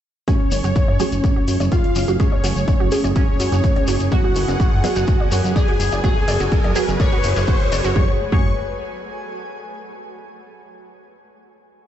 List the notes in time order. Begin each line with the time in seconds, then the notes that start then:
0.28 F#3 A3 C#4 F#4 G#4 C#5, kick, closed hi-hat, mid tom, riser, shekere
0.52 F#1 C#5, mid tom, open hi-hat, shekere
0.64 F#1 F#4, closed hi-hat, mid tom, shekere
0.75 kick, closed hi-hat, shekere
0.88 F#1 C#5, mid tom
0.98 F#3 A3 F#4 G#4, open hi-hat, mid tom, shekere
1.12 F#1, closed hi-hat, shekere
1.24 C#5, kick, closed hi-hat, mid tom, shekere
1.36 F#4
1.48 F#2, open hi-hat, shekere
1.60 F#1 C#5, closed hi-hat, mid tom, shekere
1.72 F4 F#4 F5, kick, closed hi-hat, shekere
1.80 G#5
1.84 closed hi-hat
1.95 F#1 C#5, mid tom, open hi-hat, shekere
2.08 F#1 F#4, closed hi-hat, shekere
2.20 F#3 A3 C#4 G#4 C#5, kick, closed hi-hat, mid tom, shekere
2.32 C#5, mid tom
2.44 F#1 F#4, open hi-hat, shekere
2.56 F#1, closed hi-hat, shekere
2.68 C#5, kick, closed hi-hat, mid tom, shekere
2.80 F#1 F#4
2.91 F#3 A3 G#4, open hi-hat, mid tom, shekere
3.04 F#1 C#5, closed hi-hat, mid tom, shekere
3.16 C#4 F#4 C#5, kick, closed hi-hat, mid tom, shekere
3.40 F#2 C#5, mid tom, open hi-hat, shekere
3.52 F#1 F#4, closed hi-hat, mid tom, shekere
3.64 kick, closed hi-hat, shekere
3.76 C#5, closed hi-hat, mid tom
3.87 F#1 F#4, open hi-hat, mid tom, shekere
4.00 F#1, closed hi-hat, shekere
4.11 F#3 B3 F#4 G#4 D5 F#5, kick, closed hi-hat, mid tom, shekere
4.24 F#4
4.35 F#1, open hi-hat, mid tom, shekere
4.48 F#1 D5, closed hi-hat, mid tom, shekere
4.60 F#4, kick, closed hi-hat, mid tom, shekere
4.72 F#1
4.84 F#3 B3 G#4 D5, mid tom, open hi-hat, shekere
4.96 F#1 F#4, closed hi-hat, shekere
5.00 B4
5.07 kick, closed hi-hat, mid tom, shekere
5.20 D5, mid tom
5.32 F#2 F#4, open hi-hat, mid tom, shekere
5.44 F#1, closed hi-hat, shekere
5.56 G#4 D5 G#5, kick, closed hi-hat, mid tom, shekere
5.68 F#4, closed hi-hat
5.80 F#1, open hi-hat, mid tom, shekere
5.92 F#1 D5, closed hi-hat, mid tom, shekere
6.04 F#3 B3 F#4 G#4 G#5, kick, closed hi-hat, mid tom, shekere
6.16 mid tom
6.28 F#1 D5, mid tom, open hi-hat, shekere
6.40 F#1 F#4, closed hi-hat, mid tom, shekere
6.51 kick, closed hi-hat, mid tom, shekere
6.64 F#1 D5, closed hi-hat, mid tom
6.75 F#3 B3 F#4 G#4, open hi-hat, mid tom, shekere
6.88 F#1, closed hi-hat, mid tom, shekere
7.00 C#5 D5 C#6, kick, closed hi-hat, mid tom, shekere
7.06 mid tom
7.12 F#4, mid tom
7.18 mid tom
7.23 F#1, open hi-hat, mid tom, shekere
7.30 mid tom
7.36 F#1 D5, closed hi-hat, mid tom, shekere
7.42 mid tom
7.47 F#4, kick, closed hi-hat, mid tom, shekere
7.54 mid tom
7.60 closed hi-hat, mid tom
7.66 mid tom
7.72 F#1 D5, mid tom, open hi-hat, shekere
7.78 mid tom
7.84 F#1 F#4, closed hi-hat, mid tom, shekere
7.90 mid tom
7.96 F#1 F#3 A3 F#4 G#4 C#5 C#6, kick
8.03 A4
8.10 G#5
8.32 F#1 F#3 A3 F#4 G#4 C#5 C#6, kick